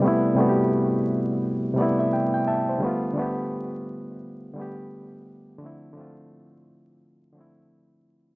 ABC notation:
X:1
M:4/4
L:1/16
Q:"Swing 16ths" 1/4=86
K:Ddor
V:1 name="Reed electric piano"
d z8 z d e g g [ea] c- | c z12 z3 | z16 |]
V:2 name="Reed electric piano"
[C,G,A,B,E]2 [C,G,A,B,^FG]6- [C,G,A,B,FG] z [C,G,A,B,E]6 | [D,G,A,B,F]2 [D,G,A,B,G]6- [D,G,A,B,G] z [D,G,A,B,G]6 | [D,F,A,CE]2 [D,F,A,CF]6- [D,F,A,CF] z [D,F,A,CE]6 |]